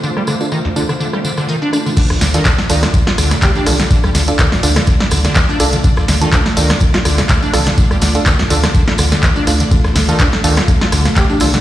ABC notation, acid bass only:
X:1
M:4/4
L:1/16
Q:"Swing 16ths" 1/4=124
K:Dphr
V:1 name="Acid bass" clef=bass
D, G, D, z E, D,, D, D, D, G, D, D, E, D D D, | D, z D, E, D z E, D, z F D, C, D, D D, D, | D, G, D, z E, D,, D, D, D, G, D, D, E, D D D, | D, z D, E, D z E, D, z F D, C, D, D D, D, |
D, G, D, z E, D,, D, D, D, G, D, D, E, D D D, | D, z D, E, D z E, D, z F D, C, D, D D, D, |]